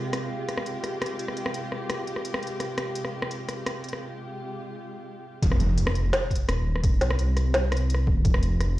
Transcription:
Already playing: C3 G#3 F4 G4
0.13 cross-stick, closed hi-hat
0.49 cross-stick, closed hi-hat
0.57 cross-stick
0.66 closed hi-hat
0.84 cross-stick, closed hi-hat
1.02 cross-stick, closed hi-hat
1.06 closed hi-hat
1.19 closed hi-hat
1.28 cross-stick
1.37 closed hi-hat
1.46 cross-stick
1.54 closed hi-hat
1.72 cross-stick
1.90 cross-stick, closed hi-hat
2.07 closed hi-hat
2.16 cross-stick
2.25 closed hi-hat
2.34 cross-stick
2.43 closed hi-hat
2.47 closed hi-hat
2.60 cross-stick, closed hi-hat
2.78 cross-stick, closed hi-hat
2.95 closed hi-hat
3.05 cross-stick
3.22 cross-stick
3.31 closed hi-hat
3.49 cross-stick, closed hi-hat
3.66 cross-stick, closed hi-hat
3.84 closed hi-hat
3.89 closed hi-hat
3.93 cross-stick
5.42 F1, kick, closed hi-hat, impact
5.52 cross-stick
5.60 closed hi-hat
5.78 closed hi-hat
5.87 cross-stick
5.95 closed hi-hat
6.13 cross-stick, snare, closed hi-hat
6.31 kick, closed hi-hat
6.36 closed hi-hat
6.48 D#1, cross-stick, closed hi-hat
6.76 cross-stick
6.84 F1, kick, closed hi-hat
7.01 C2, snare, closed hi-hat
7.10 cross-stick
7.19 closed hi-hat
7.37 cross-stick, closed hi-hat
7.54 snare, closed hi-hat
7.72 cross-stick, closed hi-hat
7.77 closed hi-hat
7.90 closed hi-hat
7.94 cross-stick
8.07 D#1, kick
8.25 F1, kick, closed hi-hat
8.34 cross-stick
8.43 closed hi-hat
8.60 cross-stick, closed hi-hat

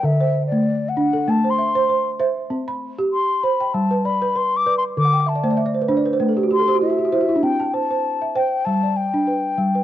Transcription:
Already playing: D5
0.03 D3 E5
0.21 C5
0.47 D5
0.52 A3
0.89 F#5
0.97 D4
1.13 A4
1.28 A3 A5
1.44 C5
1.50 C6
1.59 E5
1.75 C5
1.89 C5
2.20 C5 E5
2.50 C4
2.68 B5
2.98 G4
3.13 C6
3.43 C5 B5
3.60 G5
3.74 G3 A5
3.91 B4
4.05 D5 B5
4.22 B4
4.35 B4 C6
4.57 D6
4.66 B4 D5
4.78 C6
4.97 D3 D6
5.05 F#5
5.13 G5
5.20 F#5
5.26 E5 A5
5.35 D5
5.44 A3 C5
5.51 D5
5.57 E5
5.66 D5
5.75 C5
5.82 B4
5.89 D4 C5
5.97 D5
6.06 B4
6.13 C5
6.20 A3 B4
6.29 A4
6.37 G4
6.43 F#4
6.51 G4 C6
6.59 A4
6.68 G4 C5
6.75 F#4
6.81 E4 E5
6.90 F#4
6.99 G4
7.05 F#4
7.12 E4 C5
7.21 F#4
7.29 E4
7.36 D4
7.43 C4 G5
7.60 A5
7.74 C5 A5
7.91 C5
8.22 E5
8.35 C5 G5
8.65 G3 A5
8.83 D5
8.96 G5
9.14 D4
9.27 B4
9.58 G3
9.75 B4

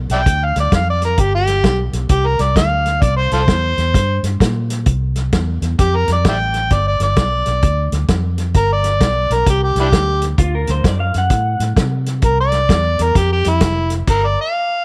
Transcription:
0.10 B1 D5 E5 G5, snare, closed hi-hat
0.26 D2, kick, closed hi-hat
0.45 F5
0.56 D2, snare, closed hi-hat
0.60 D5
0.72 F2 F5, kick, snare, closed hi-hat
0.90 D5
1.02 A#4, snare, closed hi-hat
1.17 G1 G4, kick, closed hi-hat
1.35 G4
1.47 snare, closed hi-hat
1.64 B1, kick, snare, closed hi-hat
1.93 B1, snare, closed hi-hat
2.09 C2 G4, kick, closed hi-hat
2.27 A#4
2.39 C2 D5, snare, closed hi-hat
2.55 D2 F5, kick, snare, closed hi-hat
2.86 snare, closed hi-hat
3.02 C2 D5, kick, closed hi-hat
3.17 C5
3.32 C2 F4 A4 C5, snare, closed hi-hat
3.48 E2, kick, snare, closed hi-hat
3.78 E2, snare, closed hi-hat
3.94 G2, kick, snare, closed hi-hat
4.23 G2, snare, closed hi-hat
4.40 A#2, kick, snare, closed hi-hat
4.70 snare, closed hi-hat
4.86 C2, kick, closed hi-hat
5.16 snare, closed hi-hat
5.32 E2, kick, snare, closed hi-hat
5.62 E2, snare, closed hi-hat
5.79 F2 G4, kick, snare, closed hi-hat
5.97 A#4
6.08 F2, snare, closed hi-hat
6.13 D5
6.25 A1, kick, snare, closed hi-hat
6.29 D5 E5 G5
6.54 snare, closed hi-hat
6.70 G1 D5, kick, snare, closed hi-hat
6.88 D5
7.00 G1 D5, snare, closed hi-hat
7.16 B1, kick, snare, closed hi-hat
7.46 B1, snare, closed hi-hat
7.62 D2, kick, closed hi-hat
7.92 D2, snare, closed hi-hat
8.08 F2, kick, snare, closed hi-hat
8.38 snare, closed hi-hat
8.54 G1 A#4, kick, closed hi-hat
8.73 D5
8.84 snare, closed hi-hat
9.00 B1, kick, snare, closed hi-hat
9.30 B1 A#4, snare, closed hi-hat
9.46 C2 G4, kick, snare, closed hi-hat
9.64 G4
9.75 C2, snare, closed hi-hat
9.80 D4 E4 G4
9.92 D2, kick, snare, closed hi-hat
10.22 snare, closed hi-hat
10.38 D2 F4, kick, closed hi-hat
10.55 A#4
10.67 D2 C5, snare, closed hi-hat
10.84 F#2 D5, kick, snare, closed hi-hat
11.00 F5
11.14 F#2 F#5, snare, closed hi-hat
11.30 A2, kick, snare, closed hi-hat
11.60 A2, snare, closed hi-hat
11.76 C3, kick, snare, closed hi-hat
12.06 snare, closed hi-hat
12.22 C2 A#4, kick, closed hi-hat
12.41 D5
12.52 snare, closed hi-hat
12.69 E2, kick, snare, closed hi-hat
12.99 E2 A#4, snare, closed hi-hat
13.15 F2 G4, kick, snare, closed hi-hat
13.33 G4
13.45 F2, snare, closed hi-hat
13.49 E4
13.61 F1, kick, snare, closed hi-hat
13.90 snare, closed hi-hat
14.07 G1 A#4, kick, closed hi-hat, crash
14.27 D5
14.41 F5

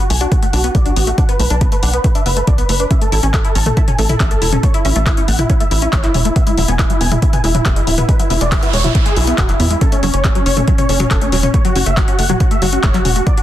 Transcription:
0.10 B1 A3 G#5, open hi-hat
0.21 D4 F#4, closed hi-hat
0.31 B3 F#4, kick, closed hi-hat
0.42 A3 F#5, closed hi-hat
0.53 B1 D4 F#4, open hi-hat
0.64 B3 F#4, closed hi-hat
0.75 B1 A3 D5, kick, closed hi-hat
0.86 D4 F#4, closed hi-hat
0.96 A1 B3 F#4, open hi-hat
1.07 A3 F#4, closed hi-hat
1.18 D4 F#5, kick, closed hi-hat
1.29 B3 B4, closed hi-hat
1.40 B1 A3 B4, open hi-hat
1.50 B1 D4 A5, closed hi-hat
1.61 B3 B4, kick, closed hi-hat
1.72 A3 B4, closed hi-hat
1.83 B1 D4 F#5, open hi-hat
1.93 B3 B4, closed hi-hat
2.04 A3 B4, kick, closed hi-hat
2.15 D4 E5, closed hi-hat
2.26 F#1 B3 B4, open hi-hat
2.37 A3 B4, closed hi-hat
2.47 B1 D4 D5, kick, closed hi-hat
2.58 B3 B4, closed hi-hat
2.69 F#1 A3 B4, open hi-hat
2.80 D4 B4, closed hi-hat
2.91 C#4 E5, kick, closed hi-hat
3.01 A3 A4, closed hi-hat
3.12 A1 E4 A4, open hi-hat
3.23 A1 C#4 G#5, closed hi-hat
3.34 A3 A4, kick, clap, closed hi-hat
3.45 E4 A4, closed hi-hat
3.55 A1 C#4 A5, open hi-hat
3.66 A3 A4, closed hi-hat, mid tom
3.77 E4 A4, kick, closed hi-hat
3.88 C#4 G#5, closed hi-hat, mid tom
3.99 A1 A3 A4, open hi-hat
4.09 E4 A4, closed hi-hat, mid tom
4.20 A1 C#4 E5, kick, clap, closed hi-hat
4.31 A3 A4, closed hi-hat
4.42 E1 E4 A4, open hi-hat
4.52 C#4 A4, closed hi-hat, mid tom
4.63 A3 C#5, kick, closed hi-hat
4.74 E4, closed hi-hat
4.85 A1 C#4 E4, open hi-hat
4.96 A1 A3 E5, closed hi-hat
5.06 E4, kick, clap, closed hi-hat
5.17 C#4 E4, closed hi-hat
5.28 A1 A3 F#5, open hi-hat
5.39 E4, closed hi-hat, mid tom
5.50 C#4 E4, kick, closed hi-hat
5.60 A3 E5, closed hi-hat
5.71 A1 E4, open hi-hat
5.82 C#4 E4, closed hi-hat
5.93 A1 A3 C#5, kick, clap, closed hi-hat
6.03 E4, clap, closed hi-hat
6.14 E1 C#4 E4, open hi-hat, mid tom
6.25 A3 E4, closed hi-hat
6.36 B3 E5, kick, closed hi-hat
6.47 G#3 E4, closed hi-hat
6.57 E1 F#3 E4, open hi-hat
6.68 E1 B3 G#5, closed hi-hat
6.79 G#3 E4, kick, clap, closed hi-hat
6.90 F#3 E4, closed hi-hat
7.01 E1 B3 G#5, open hi-hat
7.11 G#3 E4, closed hi-hat, mid tom
7.22 F#3 E4, kick, closed hi-hat
7.33 B3 G#5, closed hi-hat, mid tom
7.44 E1 G#3 E4, open hi-hat
7.55 F#3 E4, closed hi-hat, mid tom
7.65 E1 B3 E5, kick, clap, closed hi-hat
7.76 G#3 E4, closed hi-hat
7.87 D1 F#3 E4, open hi-hat
7.98 B3 E4, closed hi-hat, mid tom
8.09 G#3 B4, kick, closed hi-hat, noise sweep
8.19 F#3 E4, closed hi-hat
8.30 E1 B3 E4, open hi-hat
8.41 E1 G#3 D5, closed hi-hat
8.52 F#3 E4, kick, clap, closed hi-hat
8.63 B3 E4, closed hi-hat
8.73 E1 G#3 C#5, open hi-hat
8.84 F#3 E4, closed hi-hat, mid tom
8.95 B3 E4, kick, closed hi-hat
9.06 G#3 G#4, closed hi-hat
9.16 B1 F#3 E4, open hi-hat
9.27 B3 E4, closed hi-hat
9.38 E1 G#3 F#4, kick, clap, closed hi-hat
9.49 F#3 E4, clap, closed hi-hat
9.60 E2 B3 E4, open hi-hat, mid tom
9.70 G#3 E4, closed hi-hat
9.81 C#4 A4, kick, closed hi-hat
9.92 A3 C#4, closed hi-hat
10.03 F#1 F#3 C#4, open hi-hat
10.14 F#1 C#4 C#5, closed hi-hat
10.24 A3 C#4, kick, clap, closed hi-hat
10.35 F#3 C#4, closed hi-hat
10.46 F#1 C#4 C#5, open hi-hat
10.57 A3 C#4, closed hi-hat, mid tom
10.68 F#3 C#4, kick, closed hi-hat
10.78 C#4 C#5, closed hi-hat, mid tom
10.89 F#1 A3 C#4, open hi-hat
11.00 F#3 C#4, closed hi-hat, mid tom
11.11 F#1 C#4 A4, kick, clap, closed hi-hat
11.22 A3 C#4, closed hi-hat
11.32 E1 F#3 C#4, open hi-hat
11.43 C#4, closed hi-hat, mid tom
11.54 A3 C#5, kick, closed hi-hat
11.65 F#3 F#4, closed hi-hat
11.76 F#1 C#4 F#4, open hi-hat
11.86 F#1 A3 E5, closed hi-hat
11.97 F#3 F#4, kick, clap, closed hi-hat
12.08 C#4 F#4, closed hi-hat
12.19 F#1 A3 F#5, open hi-hat
12.29 F#3 F#4, closed hi-hat, mid tom
12.40 C#4 F#4, kick, closed hi-hat
12.51 A3 E5, closed hi-hat
12.62 F#1 F#3 F#4, open hi-hat
12.73 C#4 F#4, closed hi-hat
12.83 F#1 A3 C#5, kick, clap, closed hi-hat
12.94 F#3 F#4, clap, closed hi-hat
13.05 E1 C#4 F#4, open hi-hat, mid tom
13.16 A3 F#4, closed hi-hat
13.26 F#3 D5, kick, closed hi-hat
13.37 D4 F#4, closed hi-hat

